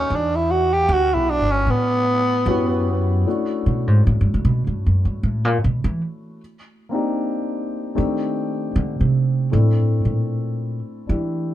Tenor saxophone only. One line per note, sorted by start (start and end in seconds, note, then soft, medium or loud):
0.00 0.17 C#4 medium
0.15 0.37 D4 medium
0.36 0.53 E4 medium
0.51 0.75 F#4 medium
0.73 0.95 G4 loud
0.93 1.15 F#4 medium
1.14 1.32 E4 medium
1.30 1.53 D4 medium
1.52 1.72 C#4 medium
1.71 3.14 B3 medium